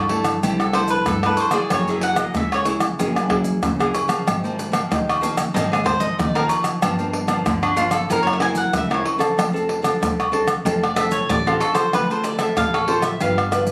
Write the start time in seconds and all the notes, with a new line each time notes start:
Already playing: G2 G3
0.09 A3 D4 E4, pandeiro
0.25 pandeiro, tamborim, shaker
0.43 C2 C3 A3 D4 E4 G4, pandeiro, low agogo, shaker, surdo
0.60 A4, pandeiro, tamborim, shaker
0.73 A3 D4 E4 C5, pandeiro, tamborim
0.88 B4, pandeiro, shaker
1.06 G2 G3 A4, pandeiro, tamborim, shaker, surdo
1.23 A3 D4 E4 B4, pandeiro, tamborim, shaker
1.37 C5, pandeiro, high agogo, shaker
1.51 A#3 E4 G#4 D5, pandeiro, tamborim, shaker
1.70 F#1 F#3 C#5, pandeiro, tamborim, low agogo, shaker, surdo
1.88 A#3 E4 G#4 E5, pandeiro, shaker
2.01 F#5, pandeiro
2.16 A#3 E4 G#4 D#5, pandeiro, tamborim, shaker
2.35 C#2 C#3 E5, pandeiro, tamborim, shaker, surdo
2.52 C#5, pandeiro, tamborim, high agogo, shaker
2.65 A#3 E4 G#4, pandeiro, shaker
2.80 pandeiro, tamborim, shaker
2.99 F#1 F#3 A#3 E4 G#4, pandeiro, low agogo, shaker, surdo
3.16 pandeiro, tamborim, shaker
3.29 A#3 E4 G#4, pandeiro, tamborim, surdo
3.44 pandeiro, shaker
3.63 F#1 C#3, pandeiro, tamborim, shaker, surdo
3.80 A#3 E4 G#4, pandeiro, tamborim, shaker
3.94 pandeiro, high agogo, shaker
4.08 F3 A#3 C4, pandeiro, tamborim, shaker
4.27 G#1 G#2, pandeiro, tamborim, low agogo, shaker, surdo
4.44 F3 A#3 C4, pandeiro, shaker
4.59 pandeiro, shaker
4.72 F3 A#3 C4, pandeiro, tamborim, shaker
4.90 D#2 D#3, pandeiro, tamborim, shaker, surdo
5.09 pandeiro, tamborim, high agogo, shaker
5.21 F3 A#3 C4, pandeiro, shaker
5.38 pandeiro, tamborim, shaker
5.54 G#1 G#2 F3 A#3 C4 D#5, pandeiro, low agogo, shaker, surdo
5.72 G#4, pandeiro, tamborim, shaker
5.84 F3 A#3 C4 C5, pandeiro, tamborim, surdo
6.00 D#5, pandeiro, shaker
6.18 D#2 D#3 D5, pandeiro, tamborim, shaker, surdo
6.35 F3 A#3 C4 A#4, pandeiro, tamborim, shaker
6.49 pandeiro, high agogo, shaker
6.64 pandeiro, tamborim, shaker
6.82 G1 G2 F3 A#3 D4, pandeiro, tamborim, low agogo, shaker, surdo
6.99 F3 A#3 D4, pandeiro, shaker
7.13 pandeiro
7.27 F3 A#3 D4, pandeiro, tamborim, shaker
7.46 G1 D3, pandeiro, tamborim, shaker, surdo
7.63 D4, pandeiro, tamborim, high agogo, shaker
7.76 F3 A#3 D4 F4, pandeiro, shaker
7.91 A4, pandeiro, tamborim, shaker
8.09 F#1 F#3 C4 E4 A#4, pandeiro, low agogo, shaker, surdo
8.23 C#5
8.27 pandeiro, tamborim, shaker
8.33 E5
8.40 C4 E4 A#4 G#5, pandeiro, tamborim
8.55 F#5, pandeiro, shaker
8.73 C#2 C#3 E5, pandeiro, tamborim, shaker, surdo
8.90 C4 E4 A#4, pandeiro, tamborim, shaker
8.94 C#5
9.05 pandeiro, high agogo
9.18 C4 D4 A4, pandeiro, tamborim, shaker
9.37 F1 F3, pandeiro, tamborim, low agogo, shaker, surdo
9.53 C4 D4 A4, pandeiro, shaker
9.69 pandeiro
9.82 C4 D4 A4, pandeiro, tamborim, shaker
10.00 C2 C3, pandeiro, tamborim, shaker, surdo
10.20 pandeiro, tamborim, high agogo, shaker
10.32 C4 D4 A4, pandeiro
10.48 pandeiro, tamborim, shaker
10.65 F1 F3 C4 D4 A4, pandeiro, low agogo, shaker, surdo
10.83 D5, pandeiro, tamborim, shaker
10.96 C4 D4 A4 E5, pandeiro, tamborim, shaker
11.11 C#5, pandeiro, shaker
11.29 A1 C3 D5, pandeiro, tamborim, shaker, surdo
11.46 C4 D4 F4 A4, pandeiro, tamborim, shaker
11.60 A4, pandeiro, high agogo, shaker
11.75 C4 F4 A4 C5, pandeiro, tamborim, shaker
11.93 D2 D3 B4, pandeiro, tamborim, low agogo, shaker, surdo
12.10 C4 F4 A4 C5, pandeiro, shaker
12.23 D5, pandeiro, shaker
12.38 C4 F4 A4 E5, pandeiro, tamborim, shaker
12.57 A1 A2 F5, pandeiro, tamborim, shaker, surdo
12.74 A4, pandeiro, tamborim, high agogo, shaker
12.88 C4 F4 A4 C5, pandeiro
13.02 E5, pandeiro, tamborim, shaker
13.21 G1 G3 D4 F4 B4 F5, pandeiro, low agogo, shaker, surdo
13.38 pandeiro, tamborim, shaker
13.52 D4 F4 B4, pandeiro, tamborim, shaker
13.67 pandeiro, shaker